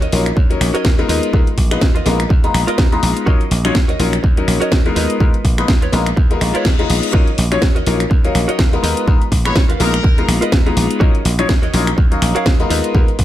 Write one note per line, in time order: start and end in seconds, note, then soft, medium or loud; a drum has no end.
0.01 0.19 F#4 medium
0.01 0.19 A#4 medium
0.01 0.19 C#5 medium
0.01 0.20 D#5 loud
0.01 closed hi-hat medium
0.12 0.31 A#1 medium
0.12 0.25 F#3 medium
0.12 0.25 C#4 medium
0.12 0.25 D#4 medium
0.12 0.25 F4 medium
0.12 0.25 A#4 medium
0.12 open hi-hat loud
0.26 finger snap medium
0.26 closed hi-hat medium
0.36 0.55 D#2 loud
0.36 muted clean electric guitar stroke medium
0.36 kick loud
0.50 0.95 F#3 medium
0.50 0.95 C#4 medium
0.50 0.95 D#4 medium
0.50 0.96 A#4 medium
0.50 muted clean electric guitar stroke soft
0.50 closed hi-hat medium
0.61 0.71 A#1 loud
0.61 finger snap medium
0.61 open hi-hat loud
0.74 0.92 F#4 loud
0.74 0.92 A#4 medium
0.74 0.92 C#5 medium
0.74 0.92 D#5 loud
0.74 closed hi-hat medium
0.85 1.03 D#2 medium
0.85 kick loud
0.85 snare loud
0.98 1.31 G#3 loud
0.98 1.31 B3 medium
0.98 1.31 D#4 medium
0.98 1.31 F4 medium
0.98 1.31 A#4 loud
0.98 closed hi-hat soft
1.09 1.19 D#2 medium
1.09 1.77 F4 loud
1.09 1.78 A#4 medium
1.09 1.78 B4 medium
1.09 1.78 D#5 loud
1.09 open hi-hat loud
1.23 closed hi-hat medium
1.33 1.43 D#2 loud
1.33 1.46 G#3 medium
1.33 1.46 B3 medium
1.33 1.46 D#4 medium
1.33 1.46 F4 medium
1.33 1.46 A#4 loud
1.33 kick loud
1.47 muted slap bass stroke soft
1.47 closed hi-hat soft
1.58 1.76 A#1 loud
1.58 kick medium
1.58 open hi-hat loud
1.71 1.81 G#3 medium
1.71 1.81 B3 medium
1.71 1.81 D#4 medium
1.71 1.81 F4 medium
1.71 1.81 B4 loud
1.71 finger snap medium
1.71 closed hi-hat medium
1.81 2.00 D#2 medium
1.81 kick loud
1.81 snare loud
1.95 2.12 F4 medium
1.95 2.13 A#4 medium
1.95 2.13 B4 medium
1.95 2.13 D#5 loud
1.95 closed hi-hat medium
2.06 2.24 A#1 medium
2.06 2.18 G#3 medium
2.06 2.19 B3 medium
2.06 2.19 D#4 medium
2.06 2.19 F4 medium
2.06 2.19 A#4 medium
2.06 snare medium
2.06 open hi-hat loud
2.20 finger snap medium
2.20 closed hi-hat medium
2.29 2.49 D#2 loud
2.29 muted clean electric guitar stroke medium
2.29 kick loud
2.43 2.89 G#3 medium
2.43 2.89 B3 medium
2.43 2.89 D#4 medium
2.43 2.89 F4 medium
2.43 2.89 A#5 loud
2.43 muted clean electric guitar stroke soft
2.43 closed hi-hat medium
2.54 2.64 A#1 loud
2.54 finger snap medium
2.54 open hi-hat loud
2.67 2.85 F4 loud
2.67 2.85 A#4 medium
2.67 2.86 B4 medium
2.67 2.86 D#5 loud
2.67 closed hi-hat medium
2.78 2.97 D#2 medium
2.78 kick loud
2.78 snare loud
2.92 3.24 G#3 medium
2.92 3.24 B3 medium
2.92 3.24 D#4 medium
2.92 3.25 F4 medium
2.92 3.25 A#5 loud
2.92 closed hi-hat soft
3.02 3.13 A#1 medium
3.02 muted clean electric guitar stroke soft
3.02 open hi-hat loud
3.17 closed hi-hat medium
3.26 3.37 D#2 loud
3.26 3.39 F#3 medium
3.26 3.40 C#4 medium
3.26 3.40 D#4 medium
3.26 3.40 F4 medium
3.26 3.58 F#4 loud
3.26 3.58 A#4 loud
3.26 3.40 A#4 loud
3.26 3.58 C#5 loud
3.26 3.58 D#5 loud
3.26 kick loud
3.41 closed hi-hat soft
3.51 3.70 A#1 loud
3.51 open hi-hat loud
3.64 3.74 F#3 medium
3.64 3.75 C#4 medium
3.64 3.75 D#4 medium
3.64 3.75 F4 medium
3.64 3.75 C#5 loud
3.64 finger snap medium
3.64 closed hi-hat medium
3.75 3.94 D#2 medium
3.75 kick loud
3.75 snare loud
3.88 4.06 F#4 medium
3.88 4.06 A#4 medium
3.88 4.07 C#5 medium
3.88 4.07 D#5 loud
3.88 closed hi-hat medium
3.99 4.18 A#1 medium
3.99 4.12 F#3 medium
3.99 4.12 C#4 medium
3.99 4.12 D#4 medium
3.99 4.12 F4 medium
3.99 4.12 A#4 medium
3.99 open hi-hat loud
4.13 finger snap medium
4.13 closed hi-hat medium
4.23 4.42 D#2 medium
4.23 muted clean electric guitar stroke medium
4.23 kick loud
4.36 4.82 F#3 medium
4.36 4.82 C#4 medium
4.36 4.83 D#4 medium
4.36 4.83 A#4 loud
4.36 muted clean electric guitar stroke soft
4.36 closed hi-hat medium
4.48 4.58 A#1 loud
4.48 finger snap medium
4.48 open hi-hat loud
4.60 4.78 F#4 medium
4.60 4.79 A#4 medium
4.60 4.79 C#5 medium
4.60 4.79 D#5 loud
4.60 closed hi-hat medium
4.72 4.90 D#2 medium
4.72 kick loud
4.72 snare loud
4.86 5.18 G#3 medium
4.86 5.18 B3 medium
4.86 5.18 D#4 medium
4.86 5.18 F4 medium
4.86 5.18 A#4 loud
4.86 closed hi-hat soft
4.95 5.06 D#2 medium
4.95 5.64 F4 loud
4.95 5.64 A#4 medium
4.95 5.65 B4 medium
4.95 5.65 D#5 loud
4.95 open hi-hat loud
5.10 closed hi-hat medium
5.20 5.30 D#2 loud
5.20 5.33 G#3 medium
5.20 5.33 B3 medium
5.20 5.33 D#4 medium
5.20 5.33 F4 medium
5.20 5.33 A#4 loud
5.20 kick loud
5.34 muted slap bass stroke soft
5.34 closed hi-hat soft
5.45 5.63 A#1 loud
5.45 kick medium
5.45 open hi-hat loud
5.58 5.68 G#3 medium
5.58 5.68 B3 medium
5.58 5.68 D#4 medium
5.58 5.68 F4 medium
5.58 5.68 B4 loud
5.58 finger snap medium
5.58 closed hi-hat medium
5.68 5.87 D#2 medium
5.68 kick loud
5.68 snare loud
5.82 6.00 F4 medium
5.82 6.00 A#4 medium
5.82 6.00 B4 medium
5.82 6.00 C#5 loud
5.82 closed hi-hat medium
5.93 6.11 A#1 medium
5.93 6.06 G#3 medium
5.93 6.06 B3 medium
5.93 6.06 D#4 medium
5.93 6.06 F4 medium
5.93 6.06 A#4 loud
5.93 snare medium
5.93 open hi-hat loud
6.06 finger snap medium
6.06 closed hi-hat medium
6.16 6.36 D#2 loud
6.16 muted clean electric guitar stroke loud
6.16 kick loud
6.16 reverse cymbal medium
6.30 6.39 G#3 medium
6.30 6.39 B3 medium
6.30 6.39 D#4 medium
6.30 6.39 F4 medium
6.30 6.39 A#4 medium
6.30 muted clean electric guitar stroke soft
6.30 closed hi-hat medium
6.41 6.51 A#1 loud
6.41 6.76 G#3 medium
6.41 6.76 B3 medium
6.41 6.76 D#4 medium
6.41 6.76 F4 medium
6.41 6.76 A#5 medium
6.41 finger snap medium
6.41 open hi-hat loud
6.54 6.72 F4 medium
6.54 6.72 A#4 medium
6.54 6.73 B4 medium
6.54 6.73 C#5 loud
6.54 closed hi-hat medium
6.65 6.84 D#2 medium
6.65 kick loud
6.65 snare loud
6.79 7.11 G#3 loud
6.79 7.11 B3 medium
6.79 7.11 D#4 medium
6.79 7.12 F4 medium
6.79 7.12 A#5 loud
6.79 closed hi-hat soft
6.89 7.00 A#1 medium
6.89 muted clean electric guitar stroke soft
6.89 open hi-hat loud
7.03 closed hi-hat medium
7.13 7.24 D#2 loud
7.13 7.27 F#3 medium
7.13 7.27 C#4 medium
7.13 7.27 D#4 medium
7.13 7.27 F4 medium
7.13 7.45 F#4 loud
7.13 7.45 A#4 loud
7.13 7.27 A#4 medium
7.13 7.45 C#5 loud
7.13 7.45 D#5 loud
7.13 kick loud
7.27 closed hi-hat soft
7.38 7.57 A#1 loud
7.38 open hi-hat loud
7.51 7.61 F#3 medium
7.51 7.62 C#4 medium
7.51 7.62 D#4 medium
7.51 7.62 F4 medium
7.51 7.62 C#5 loud
7.51 finger snap medium
7.51 closed hi-hat medium
7.62 7.81 D#2 medium
7.62 kick loud
7.62 snare loud
7.75 7.93 F#4 medium
7.75 7.93 A#4 medium
7.75 7.94 C#5 medium
7.75 7.94 D#5 loud
7.75 closed hi-hat medium
7.86 8.05 A#1 medium
7.86 7.99 F#3 medium
7.86 7.99 C#4 medium
7.86 7.99 D#4 medium
7.86 7.99 F4 medium
7.86 8.00 A#4 medium
7.86 open hi-hat loud
8.00 finger snap medium
8.00 closed hi-hat medium
8.10 8.29 D#2 medium
8.10 muted clean electric guitar stroke medium
8.10 kick loud
8.24 8.70 F#3 medium
8.24 8.70 C#4 medium
8.24 8.70 D#4 medium
8.24 8.70 A#4 medium
8.24 8.70 F5 medium
8.24 muted clean electric guitar stroke soft
8.24 closed hi-hat medium
8.35 8.45 A#1 loud
8.35 finger snap medium
8.35 open hi-hat loud
8.48 8.66 F#4 medium
8.48 8.66 A#4 medium
8.48 8.66 C#5 medium
8.48 8.67 D#5 loud
8.48 closed hi-hat medium
8.59 8.78 D#2 medium
8.59 kick loud
8.59 snare loud
8.73 9.05 G#3 medium
8.73 9.05 B3 medium
8.73 9.05 D#4 medium
8.73 9.05 F4 medium
8.73 9.05 A#4 loud
8.73 closed hi-hat soft
8.83 8.93 D#2 medium
8.83 9.51 F4 loud
8.83 9.52 A#4 medium
8.83 9.52 B4 medium
8.83 9.52 D#5 loud
8.83 open hi-hat loud
8.97 closed hi-hat medium
9.07 9.17 D#2 loud
9.07 9.20 G#3 medium
9.07 9.20 B3 medium
9.07 9.20 D#4 medium
9.07 9.20 F4 medium
9.07 9.21 A#4 loud
9.07 kick loud
9.22 closed hi-hat soft
9.32 9.50 A#1 loud
9.32 kick medium
9.32 open hi-hat loud
9.45 9.55 G#3 medium
9.45 9.55 B3 medium
9.45 9.55 D#4 medium
9.45 9.55 F4 medium
9.45 9.56 B4 loud
9.45 9.64 C#5 medium
9.45 finger snap medium
9.45 closed hi-hat medium
9.56 9.74 D#2 medium
9.56 kick loud
9.56 snare loud
9.69 9.87 F4 medium
9.69 9.87 A#4 medium
9.69 9.87 B4 medium
9.69 9.87 F5 loud
9.69 closed hi-hat medium
9.80 9.99 A#1 medium
9.80 9.93 G#3 medium
9.80 9.93 B3 medium
9.80 9.93 D#4 medium
9.80 9.93 F4 medium
9.80 10.28 A#4 medium
9.80 9.93 A#4 medium
9.80 snare medium
9.80 open hi-hat loud
9.94 finger snap medium
9.94 closed hi-hat medium
10.03 10.23 D#2 medium
10.03 muted clean electric guitar stroke medium
10.03 kick loud
10.17 10.63 G#3 medium
10.17 10.63 B3 medium
10.17 10.63 D#4 medium
10.17 10.63 F4 medium
10.17 10.63 A#5 loud
10.17 muted clean electric guitar stroke soft
10.17 closed hi-hat medium
10.28 10.38 A#1 loud
10.28 finger snap medium
10.28 open hi-hat loud
10.41 10.59 F4 medium
10.41 10.59 A#4 medium
10.41 10.60 B4 medium
10.41 10.60 D#5 loud
10.41 closed hi-hat medium
10.52 10.71 D#2 medium
10.52 kick loud
10.52 snare loud
10.66 10.98 G#3 medium
10.66 10.98 B3 medium
10.66 10.98 D#4 medium
10.66 10.99 F4 medium
10.66 10.99 A#5 loud
10.66 closed hi-hat soft
10.76 10.87 A#1 medium
10.76 muted clean electric guitar stroke soft
10.76 open hi-hat loud
10.91 closed hi-hat medium
11.00 11.11 D#2 loud
11.00 11.14 F#3 medium
11.00 11.14 C#4 medium
11.00 11.14 D#4 medium
11.00 11.14 F4 medium
11.00 11.32 F#4 loud
11.00 11.32 A#4 loud
11.00 11.14 A#4 loud
11.00 11.32 C#5 loud
11.00 11.32 D#5 loud
11.00 kick loud
11.15 closed hi-hat soft
11.25 11.44 A#1 loud
11.25 open hi-hat loud
11.38 11.48 F#3 medium
11.38 11.49 C#4 medium
11.38 11.49 D#4 medium
11.38 11.49 F4 medium
11.38 11.49 C#5 loud
11.38 finger snap medium
11.38 closed hi-hat medium
11.49 11.68 D#2 medium
11.49 kick loud
11.49 snare loud
11.62 11.80 F#4 medium
11.62 11.80 A#4 medium
11.62 11.81 C#5 medium
11.62 11.81 D#5 loud
11.62 closed hi-hat medium
11.73 11.92 A#1 medium
11.73 11.86 F#3 medium
11.73 11.86 C#4 medium
11.73 11.86 D#4 medium
11.73 11.86 F4 medium
11.73 11.87 A#4 loud
11.73 open hi-hat loud
11.87 finger snap medium
11.87 closed hi-hat medium
11.97 12.16 D#2 loud
11.97 muted clean electric guitar stroke medium
11.97 kick loud
12.11 12.56 F#3 medium
12.11 12.57 C#4 medium
12.11 12.57 D#4 medium
12.11 12.57 A#4 loud
12.11 12.57 F5 medium
12.11 muted clean electric guitar stroke soft
12.11 closed hi-hat medium
12.22 12.32 A#1 loud
12.22 finger snap medium
12.22 open hi-hat loud
12.35 12.53 F#4 medium
12.35 12.53 A#4 medium
12.35 12.53 C#5 medium
12.35 12.53 F5 loud
12.35 closed hi-hat medium
12.46 12.65 D#2 medium
12.46 kick loud
12.46 snare loud
12.60 12.92 G#3 loud
12.60 12.92 B3 medium
12.60 12.92 D#4 medium
12.60 12.92 F4 medium
12.60 12.92 A#4 loud
12.60 closed hi-hat soft
12.70 12.80 D#2 medium
12.70 13.24 F4 loud
12.70 13.24 A#4 medium
12.70 13.24 B4 loud
12.70 13.24 D#5 loud
12.70 open hi-hat loud
12.84 closed hi-hat medium
12.94 13.05 D#2 loud
12.94 13.07 G#3 medium
12.94 13.07 B3 medium
12.94 13.07 D#4 medium
12.94 13.08 F4 medium
12.94 13.08 A#4 loud
12.94 kick loud
13.08 muted slap bass stroke soft
13.08 closed hi-hat soft
13.19 13.24 A#1 loud
13.19 kick medium
13.19 open hi-hat loud